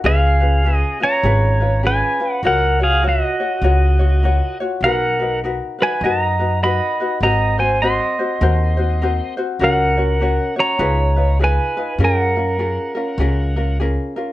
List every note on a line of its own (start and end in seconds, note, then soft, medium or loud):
0.04 0.82 C#2 medium
0.04 0.40 C#4 medium
0.04 0.40 F4 medium
0.04 0.40 G#4 medium
0.04 0.98 G#4 medium
0.04 0.39 B4 medium
0.04 0.76 F5 medium
0.41 0.64 C#4 soft
0.41 0.64 F4 soft
0.41 0.64 B4 medium
0.64 1.01 C#4 medium
0.64 1.00 F4 medium
0.64 1.00 G#4 medium
0.64 0.99 B4 medium
0.76 1.04 D#5 medium
1.00 1.23 C#4 soft
1.00 1.24 F4 soft
1.00 1.23 B4 soft
1.00 1.87 A#5 loud
1.04 1.81 C#5 medium
1.23 2.01 G#1 loud
1.23 1.60 C#4 medium
1.23 1.61 F4 medium
1.23 1.60 G#4 medium
1.23 1.59 B4 medium
1.60 1.82 C#4 soft
1.60 1.83 F4 soft
1.60 1.83 B4 soft
1.83 2.20 C#4 medium
1.83 2.20 F4 medium
1.83 2.19 G#4 medium
1.83 2.19 B4 medium
1.83 2.41 B4 medium
1.83 2.33 G#5 medium
2.20 2.44 C#4 soft
2.20 2.43 F4 soft
2.20 2.43 B4 soft
2.33 2.46 F#5 medium
2.43 3.20 C#2 medium
2.43 2.80 F4 medium
2.43 2.79 F#4 medium
2.43 2.80 A#4 medium
2.43 2.79 A#4 medium
2.43 2.78 C#5 medium
2.43 2.82 F#5 medium
2.80 3.01 F4 soft
2.80 3.02 F#4 soft
2.80 3.03 G#4 medium
2.80 3.03 C#5 medium
2.84 3.06 F5 medium
3.02 3.39 F4 medium
3.02 3.40 F#4 medium
3.02 3.39 A#4 medium
3.02 3.39 C#5 medium
3.08 4.57 F#4 medium
3.08 4.58 D#5 medium
3.40 3.63 F4 soft
3.40 3.63 F#4 soft
3.40 3.63 C#5 soft
3.62 4.40 C#2 medium
3.62 4.00 F4 medium
3.62 3.99 F#4 medium
3.62 3.99 A#4 medium
3.62 3.98 C#5 medium
3.99 4.22 F4 soft
3.99 4.23 F#4 soft
3.99 4.22 C#5 soft
4.23 4.59 F4 medium
4.23 4.60 F#4 medium
4.23 4.59 A#4 medium
4.23 4.59 C#5 medium
4.60 4.84 F4 soft
4.60 4.83 F#4 medium
4.60 4.83 C#5 medium
4.81 5.59 B1 medium
4.81 5.20 D#4 medium
4.81 5.20 F#4 medium
4.81 5.19 A#4 medium
4.81 5.39 F#5 medium
4.85 5.39 A#4 medium
4.85 5.18 B4 medium
5.20 5.43 D#4 soft
5.20 5.43 F#4 soft
5.20 5.42 B4 soft
5.44 5.79 D#4 medium
5.44 5.79 F#4 medium
5.44 5.79 A#4 medium
5.44 5.77 B4 medium
5.79 6.03 D#4 soft
5.79 6.02 F#4 soft
5.79 6.02 B4 soft
5.79 6.02 B4 medium
5.83 6.05 G#5 medium
6.01 6.79 F#2 medium
6.01 6.39 D#4 medium
6.01 6.39 F#4 medium
6.01 6.39 A#4 medium
6.01 6.38 B4 medium
6.01 6.59 D#5 medium
6.06 6.63 A#5 medium
6.39 6.62 D#4 soft
6.39 6.62 F#4 soft
6.39 6.62 B4 soft
6.63 6.99 D#4 medium
6.63 6.99 F#4 medium
6.63 6.98 A#4 medium
6.63 6.99 B4 medium
6.63 7.18 D#5 medium
6.63 7.23 B5 medium
7.00 7.22 D#4 soft
7.00 7.22 F#4 soft
7.00 7.22 B4 soft
7.21 7.99 G#1 medium
7.21 7.58 C4 medium
7.21 7.58 F#4 medium
7.21 7.58 A#4 medium
7.21 7.57 C5 medium
7.21 7.56 D#5 medium
7.21 7.60 A#5 medium
7.58 7.82 C4 soft
7.58 7.82 F#4 soft
7.58 7.81 C5 soft
7.58 7.80 C5 medium
7.58 7.83 G#5 medium
7.82 8.19 C4 medium
7.82 8.19 F#4 medium
7.82 8.18 A#4 medium
7.82 8.18 C5 medium
7.82 9.34 D#5 medium
7.82 9.34 C6 medium
8.19 8.41 C4 soft
8.19 8.41 F#4 soft
8.19 8.42 C5 medium
8.41 9.19 D#2 loud
8.41 8.78 C4 medium
8.41 8.77 F#4 medium
8.41 8.78 A#4 medium
8.41 8.76 C5 medium
8.77 9.01 C4 soft
8.77 9.01 F#4 soft
8.77 9.00 C5 medium
9.02 9.37 C4 medium
9.02 9.37 F#4 medium
9.02 9.38 A#4 medium
9.02 9.36 C5 medium
9.37 9.61 C4 soft
9.37 9.60 F#4 medium
9.37 9.60 C5 medium
9.59 10.38 C#2 medium
9.59 9.97 C#4 medium
9.59 9.97 F#4 medium
9.59 9.97 A#4 medium
9.59 9.96 C#5 medium
9.64 10.54 A#4 medium
9.64 10.54 F#5 medium
9.97 10.20 C#4 soft
9.97 10.21 F#4 soft
9.97 10.20 C#5 medium
10.20 10.57 C#4 medium
10.20 10.55 F#4 medium
10.20 10.57 A#4 medium
10.20 10.55 C#5 medium
10.56 10.79 C#4 soft
10.56 10.79 F#4 soft
10.56 10.79 C#5 soft
10.56 11.37 C#5 medium
10.60 11.37 A#5 loud
10.79 11.57 C#2 loud
10.79 11.16 D#4 medium
10.79 11.16 F4 medium
10.79 11.16 G#4 medium
10.79 11.15 B4 medium
11.16 11.39 D#4 soft
11.16 11.39 F4 soft
11.16 11.40 B4 soft
11.39 11.77 D#4 medium
11.39 11.77 F4 medium
11.39 11.76 G#4 medium
11.39 11.76 B4 medium
11.44 11.98 B4 medium
11.44 12.03 G#5 medium
11.77 11.99 D#4 soft
11.77 11.99 F4 soft
11.77 12.00 B4 medium
11.98 12.77 F#2 medium
11.98 12.36 C#4 medium
11.98 12.36 F4 medium
11.98 12.36 G#4 medium
11.98 12.35 A#4 medium
12.04 13.77 A#4 medium
12.04 13.77 F#5 medium
12.36 12.58 C#4 soft
12.36 12.59 F4 soft
12.36 12.59 A#4 soft
12.59 12.96 C#4 medium
12.59 12.95 F4 medium
12.59 12.96 G#4 medium
12.59 12.94 A#4 medium
12.95 13.19 C#4 soft
12.95 13.20 F4 medium
12.95 13.19 A#4 medium
13.18 13.96 C#2 loud
13.18 13.56 C#4 medium
13.18 13.56 F4 medium
13.18 13.56 G#4 medium
13.18 13.55 A#4 medium
13.56 13.79 C#4 soft
13.56 13.80 F4 soft
13.56 13.79 A#4 soft
13.80 14.16 C#4 medium
13.80 14.16 F4 medium
13.80 14.16 G#4 medium
13.80 14.15 A#4 medium
14.16 14.32 C#4 soft
14.16 14.32 F4 soft
14.16 14.32 A#4 medium